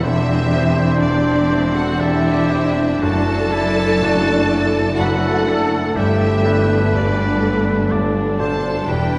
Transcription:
Already playing: E1 E2
0.02 E1 E2 C4 D4 E4 G4 C5 E5
0.53 D4 E4 C5
1.00 E1 E2 D4 G4 D5
1.51 D4 E4 C5
1.74 F#4 A4 F#5
1.98 E1 E2 E4 G4 A4 E5
2.51 D4 E4 G4 C5
3.00 F#1 F#2 A3 D4 E4 F#4 A4 D5 A5
3.52 D4 E4 A4
4.01 F#1 F#2 F#4
4.51 D4 E4 A4
4.98 F#1 F#2 F#4 A4 B4 F#5
5.47 D4 E4 A4
5.96 G1 G2 B2 D4 E4 G4 A4 E5
6.43 B3 D4 A4 B4
6.92 G1 G2 D4 G4 D5
7.42 B3 D4 A4
7.91 G1 G2 D5
8.39 B2 D4 A4 C5 A5
8.86 E1 E2 E3 B3 E4 G4 B4 G5

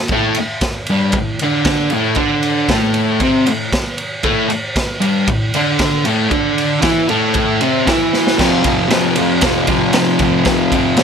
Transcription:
0.08 A2, kick, crash
0.12 A3
0.35 ride
0.40 muted distorted electric guitar stroke
0.61 kick, snare, ride
0.87 G2, ride
0.91 G3
1.12 kick, ride
1.17 A2
1.39 D3, ride
1.44 D4
1.65 kick, snare, ride
1.90 A2 A3, ride
2.15 D3 D4, kick, ride
2.43 ride
2.69 A2 A3, kick, snare, ride
2.94 ride
3.20 C3 C4, kick, ride
3.46 A2, ride
3.73 kick, snare, ride
3.98 ride
4.23 A2 A3, kick, ride
4.50 muted distorted electric guitar stroke, ride
4.76 kick, snare, ride
5.01 G2 G3, ride
5.27 A2, kick, ride
5.54 D3 D4, ride
5.79 kick, snare, ride
6.05 A2 A3, ride
6.30 D3 D4, kick, ride
6.58 ride
6.82 E3 E4, kick, snare, ride
7.09 A2 A3, ride
7.34 kick, ride
7.61 C3 C4, ride
7.87 E3 E4, kick, snare, ride
8.13 snare
8.27 snare
8.37 F2 C3, kick, snare, crash
8.41 F3
8.63 C3 F3, kick, ride
8.89 F2 C3, snare, ride
8.94 F3
9.16 F3, ride
9.22 C3
9.41 F2 C3, kick, snare, ride
9.46 F3
9.67 C3 F3, kick, ride
9.71 F2
9.93 F2 C3, snare, ride
9.98 F3
10.19 F3, kick, ride
10.25 C3
10.45 F2 C3 F3, kick, snare, ride
10.72 F3, kick, ride
10.77 C3
10.97 F2 C3, snare, ride

